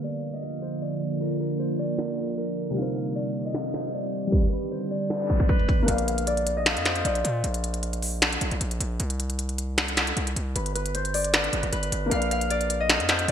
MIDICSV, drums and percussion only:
0, 0, Header, 1, 2, 480
1, 0, Start_track
1, 0, Tempo, 389610
1, 1486, Time_signature, 4, 2, 24, 8
1, 16407, End_track
2, 0, Start_track
2, 0, Title_t, "Drums"
2, 45, Note_on_c, 9, 42, 66
2, 169, Note_off_c, 9, 42, 0
2, 171, Note_on_c, 9, 42, 49
2, 286, Note_off_c, 9, 42, 0
2, 286, Note_on_c, 9, 42, 71
2, 409, Note_off_c, 9, 42, 0
2, 656, Note_on_c, 9, 42, 60
2, 764, Note_off_c, 9, 42, 0
2, 764, Note_on_c, 9, 42, 72
2, 887, Note_off_c, 9, 42, 0
2, 1006, Note_on_c, 9, 42, 77
2, 1129, Note_off_c, 9, 42, 0
2, 1133, Note_on_c, 9, 42, 53
2, 1248, Note_off_c, 9, 42, 0
2, 1248, Note_on_c, 9, 42, 87
2, 1371, Note_off_c, 9, 42, 0
2, 1485, Note_on_c, 9, 42, 75
2, 1608, Note_off_c, 9, 42, 0
2, 1611, Note_on_c, 9, 42, 60
2, 1729, Note_off_c, 9, 42, 0
2, 1729, Note_on_c, 9, 42, 66
2, 1853, Note_off_c, 9, 42, 0
2, 1853, Note_on_c, 9, 42, 56
2, 1965, Note_off_c, 9, 42, 0
2, 1965, Note_on_c, 9, 42, 66
2, 2088, Note_off_c, 9, 42, 0
2, 2091, Note_on_c, 9, 42, 50
2, 2206, Note_off_c, 9, 42, 0
2, 2206, Note_on_c, 9, 42, 69
2, 2329, Note_off_c, 9, 42, 0
2, 2446, Note_on_c, 9, 38, 117
2, 2453, Note_on_c, 9, 26, 95
2, 2569, Note_off_c, 9, 38, 0
2, 2576, Note_off_c, 9, 26, 0
2, 2576, Note_on_c, 9, 42, 60
2, 2683, Note_off_c, 9, 42, 0
2, 2683, Note_on_c, 9, 42, 70
2, 2806, Note_off_c, 9, 42, 0
2, 2808, Note_on_c, 9, 42, 53
2, 2926, Note_off_c, 9, 42, 0
2, 2926, Note_on_c, 9, 42, 75
2, 3049, Note_off_c, 9, 42, 0
2, 3053, Note_on_c, 9, 42, 52
2, 3169, Note_off_c, 9, 42, 0
2, 3169, Note_on_c, 9, 42, 85
2, 3292, Note_off_c, 9, 42, 0
2, 3404, Note_on_c, 9, 42, 76
2, 3528, Note_off_c, 9, 42, 0
2, 3532, Note_on_c, 9, 42, 59
2, 3651, Note_off_c, 9, 42, 0
2, 3651, Note_on_c, 9, 42, 66
2, 3774, Note_off_c, 9, 42, 0
2, 3774, Note_on_c, 9, 42, 55
2, 3886, Note_off_c, 9, 42, 0
2, 3886, Note_on_c, 9, 42, 68
2, 4009, Note_off_c, 9, 42, 0
2, 4013, Note_on_c, 9, 42, 50
2, 4127, Note_off_c, 9, 42, 0
2, 4127, Note_on_c, 9, 42, 68
2, 4250, Note_off_c, 9, 42, 0
2, 4367, Note_on_c, 9, 38, 117
2, 4374, Note_on_c, 9, 26, 94
2, 4490, Note_off_c, 9, 38, 0
2, 4497, Note_off_c, 9, 26, 0
2, 4604, Note_on_c, 9, 42, 75
2, 4606, Note_on_c, 9, 38, 87
2, 4613, Note_on_c, 9, 26, 70
2, 4728, Note_off_c, 9, 42, 0
2, 4730, Note_off_c, 9, 38, 0
2, 4737, Note_off_c, 9, 26, 0
2, 4846, Note_on_c, 9, 42, 77
2, 4970, Note_off_c, 9, 42, 0
2, 4973, Note_on_c, 9, 42, 55
2, 5089, Note_off_c, 9, 42, 0
2, 5089, Note_on_c, 9, 42, 86
2, 5212, Note_off_c, 9, 42, 0
2, 5325, Note_on_c, 9, 42, 77
2, 5326, Note_on_c, 9, 36, 108
2, 5448, Note_off_c, 9, 42, 0
2, 5449, Note_off_c, 9, 36, 0
2, 5452, Note_on_c, 9, 42, 60
2, 5570, Note_off_c, 9, 42, 0
2, 5570, Note_on_c, 9, 42, 68
2, 5693, Note_off_c, 9, 42, 0
2, 5693, Note_on_c, 9, 42, 56
2, 5805, Note_off_c, 9, 42, 0
2, 5805, Note_on_c, 9, 42, 66
2, 5929, Note_off_c, 9, 42, 0
2, 6172, Note_on_c, 9, 42, 72
2, 6286, Note_on_c, 9, 38, 118
2, 6293, Note_on_c, 9, 26, 94
2, 6295, Note_off_c, 9, 42, 0
2, 6409, Note_off_c, 9, 38, 0
2, 6412, Note_on_c, 9, 42, 42
2, 6416, Note_off_c, 9, 26, 0
2, 6524, Note_off_c, 9, 42, 0
2, 6524, Note_on_c, 9, 42, 71
2, 6526, Note_on_c, 9, 36, 88
2, 6647, Note_off_c, 9, 42, 0
2, 6648, Note_on_c, 9, 42, 55
2, 6649, Note_off_c, 9, 36, 0
2, 6652, Note_on_c, 9, 36, 94
2, 6765, Note_off_c, 9, 36, 0
2, 6765, Note_off_c, 9, 42, 0
2, 6765, Note_on_c, 9, 36, 95
2, 6765, Note_on_c, 9, 42, 77
2, 6888, Note_off_c, 9, 36, 0
2, 6888, Note_off_c, 9, 42, 0
2, 6893, Note_on_c, 9, 42, 53
2, 7005, Note_on_c, 9, 36, 92
2, 7009, Note_off_c, 9, 42, 0
2, 7009, Note_on_c, 9, 42, 86
2, 7128, Note_off_c, 9, 36, 0
2, 7132, Note_off_c, 9, 42, 0
2, 7245, Note_on_c, 9, 42, 80
2, 7368, Note_off_c, 9, 42, 0
2, 7372, Note_on_c, 9, 42, 60
2, 7491, Note_off_c, 9, 42, 0
2, 7491, Note_on_c, 9, 42, 69
2, 7614, Note_off_c, 9, 42, 0
2, 7614, Note_on_c, 9, 42, 55
2, 7726, Note_off_c, 9, 42, 0
2, 7726, Note_on_c, 9, 42, 69
2, 7849, Note_off_c, 9, 42, 0
2, 7852, Note_on_c, 9, 42, 50
2, 7966, Note_off_c, 9, 42, 0
2, 7966, Note_on_c, 9, 42, 72
2, 8089, Note_off_c, 9, 42, 0
2, 8206, Note_on_c, 9, 38, 122
2, 8206, Note_on_c, 9, 42, 76
2, 8213, Note_on_c, 9, 26, 97
2, 8329, Note_off_c, 9, 38, 0
2, 8329, Note_off_c, 9, 42, 0
2, 8336, Note_off_c, 9, 26, 0
2, 8337, Note_on_c, 9, 42, 61
2, 8444, Note_off_c, 9, 42, 0
2, 8444, Note_on_c, 9, 42, 76
2, 8446, Note_on_c, 9, 38, 96
2, 8453, Note_on_c, 9, 26, 73
2, 8567, Note_off_c, 9, 42, 0
2, 8569, Note_off_c, 9, 38, 0
2, 8569, Note_on_c, 9, 42, 54
2, 8576, Note_off_c, 9, 26, 0
2, 8686, Note_off_c, 9, 42, 0
2, 8686, Note_on_c, 9, 42, 76
2, 8809, Note_off_c, 9, 42, 0
2, 8813, Note_on_c, 9, 42, 56
2, 8929, Note_off_c, 9, 42, 0
2, 8929, Note_on_c, 9, 42, 91
2, 9052, Note_off_c, 9, 42, 0
2, 9165, Note_on_c, 9, 42, 79
2, 9288, Note_off_c, 9, 42, 0
2, 9292, Note_on_c, 9, 42, 61
2, 9410, Note_off_c, 9, 42, 0
2, 9410, Note_on_c, 9, 42, 68
2, 9534, Note_off_c, 9, 42, 0
2, 9534, Note_on_c, 9, 42, 57
2, 9645, Note_off_c, 9, 42, 0
2, 9645, Note_on_c, 9, 42, 68
2, 9769, Note_off_c, 9, 42, 0
2, 9772, Note_on_c, 9, 42, 50
2, 9887, Note_on_c, 9, 46, 78
2, 9895, Note_off_c, 9, 42, 0
2, 10010, Note_off_c, 9, 46, 0
2, 10127, Note_on_c, 9, 38, 118
2, 10127, Note_on_c, 9, 42, 74
2, 10134, Note_on_c, 9, 26, 95
2, 10250, Note_off_c, 9, 38, 0
2, 10250, Note_off_c, 9, 42, 0
2, 10256, Note_on_c, 9, 42, 60
2, 10257, Note_off_c, 9, 26, 0
2, 10364, Note_off_c, 9, 42, 0
2, 10364, Note_on_c, 9, 42, 76
2, 10487, Note_off_c, 9, 42, 0
2, 10489, Note_on_c, 9, 42, 53
2, 10606, Note_off_c, 9, 42, 0
2, 10606, Note_on_c, 9, 42, 80
2, 10729, Note_off_c, 9, 42, 0
2, 10733, Note_on_c, 9, 42, 54
2, 10848, Note_off_c, 9, 42, 0
2, 10848, Note_on_c, 9, 42, 88
2, 10972, Note_off_c, 9, 42, 0
2, 11084, Note_on_c, 9, 42, 79
2, 11207, Note_off_c, 9, 42, 0
2, 11212, Note_on_c, 9, 42, 60
2, 11330, Note_off_c, 9, 42, 0
2, 11330, Note_on_c, 9, 42, 69
2, 11453, Note_off_c, 9, 42, 0
2, 11454, Note_on_c, 9, 42, 58
2, 11566, Note_off_c, 9, 42, 0
2, 11566, Note_on_c, 9, 42, 68
2, 11690, Note_off_c, 9, 42, 0
2, 11692, Note_on_c, 9, 42, 49
2, 11807, Note_off_c, 9, 42, 0
2, 11807, Note_on_c, 9, 42, 72
2, 11930, Note_off_c, 9, 42, 0
2, 12046, Note_on_c, 9, 38, 122
2, 12047, Note_on_c, 9, 42, 75
2, 12053, Note_on_c, 9, 26, 98
2, 12170, Note_off_c, 9, 38, 0
2, 12170, Note_off_c, 9, 42, 0
2, 12176, Note_on_c, 9, 42, 59
2, 12177, Note_off_c, 9, 26, 0
2, 12284, Note_off_c, 9, 42, 0
2, 12284, Note_on_c, 9, 42, 77
2, 12286, Note_on_c, 9, 38, 91
2, 12293, Note_on_c, 9, 26, 72
2, 12407, Note_off_c, 9, 42, 0
2, 12409, Note_off_c, 9, 38, 0
2, 12409, Note_on_c, 9, 42, 55
2, 12416, Note_off_c, 9, 26, 0
2, 12526, Note_off_c, 9, 42, 0
2, 12526, Note_on_c, 9, 42, 80
2, 12649, Note_off_c, 9, 42, 0
2, 12653, Note_on_c, 9, 42, 56
2, 12769, Note_off_c, 9, 42, 0
2, 12769, Note_on_c, 9, 42, 88
2, 12893, Note_off_c, 9, 42, 0
2, 13005, Note_on_c, 9, 42, 78
2, 13129, Note_off_c, 9, 42, 0
2, 13133, Note_on_c, 9, 42, 62
2, 13251, Note_off_c, 9, 42, 0
2, 13251, Note_on_c, 9, 42, 70
2, 13374, Note_off_c, 9, 42, 0
2, 13375, Note_on_c, 9, 42, 59
2, 13487, Note_off_c, 9, 42, 0
2, 13487, Note_on_c, 9, 42, 69
2, 13610, Note_off_c, 9, 42, 0
2, 13613, Note_on_c, 9, 42, 50
2, 13727, Note_off_c, 9, 42, 0
2, 13727, Note_on_c, 9, 42, 43
2, 13728, Note_on_c, 9, 46, 78
2, 13850, Note_off_c, 9, 42, 0
2, 13851, Note_off_c, 9, 46, 0
2, 13853, Note_on_c, 9, 42, 72
2, 13966, Note_off_c, 9, 42, 0
2, 13966, Note_on_c, 9, 42, 78
2, 13967, Note_on_c, 9, 38, 118
2, 13974, Note_on_c, 9, 26, 95
2, 14089, Note_off_c, 9, 42, 0
2, 14091, Note_off_c, 9, 38, 0
2, 14094, Note_on_c, 9, 42, 45
2, 14098, Note_off_c, 9, 26, 0
2, 14204, Note_off_c, 9, 42, 0
2, 14204, Note_on_c, 9, 42, 76
2, 14328, Note_off_c, 9, 42, 0
2, 14329, Note_on_c, 9, 42, 54
2, 14446, Note_off_c, 9, 42, 0
2, 14446, Note_on_c, 9, 42, 77
2, 14569, Note_off_c, 9, 42, 0
2, 14573, Note_on_c, 9, 42, 55
2, 14689, Note_off_c, 9, 42, 0
2, 14689, Note_on_c, 9, 42, 91
2, 14812, Note_off_c, 9, 42, 0
2, 14925, Note_on_c, 9, 42, 78
2, 15048, Note_off_c, 9, 42, 0
2, 15052, Note_on_c, 9, 42, 59
2, 15170, Note_off_c, 9, 42, 0
2, 15170, Note_on_c, 9, 42, 69
2, 15293, Note_off_c, 9, 42, 0
2, 15294, Note_on_c, 9, 42, 58
2, 15406, Note_off_c, 9, 42, 0
2, 15406, Note_on_c, 9, 42, 68
2, 15529, Note_off_c, 9, 42, 0
2, 15532, Note_on_c, 9, 42, 49
2, 15646, Note_off_c, 9, 42, 0
2, 15646, Note_on_c, 9, 42, 74
2, 15770, Note_off_c, 9, 42, 0
2, 15887, Note_on_c, 9, 38, 119
2, 15887, Note_on_c, 9, 42, 74
2, 15894, Note_on_c, 9, 26, 95
2, 16010, Note_off_c, 9, 38, 0
2, 16010, Note_off_c, 9, 42, 0
2, 16017, Note_off_c, 9, 26, 0
2, 16017, Note_on_c, 9, 42, 60
2, 16124, Note_off_c, 9, 42, 0
2, 16124, Note_on_c, 9, 42, 75
2, 16126, Note_on_c, 9, 38, 90
2, 16133, Note_on_c, 9, 26, 75
2, 16247, Note_off_c, 9, 42, 0
2, 16249, Note_off_c, 9, 38, 0
2, 16249, Note_on_c, 9, 42, 53
2, 16256, Note_off_c, 9, 26, 0
2, 16366, Note_off_c, 9, 42, 0
2, 16366, Note_on_c, 9, 42, 79
2, 16407, Note_off_c, 9, 42, 0
2, 16407, End_track
0, 0, End_of_file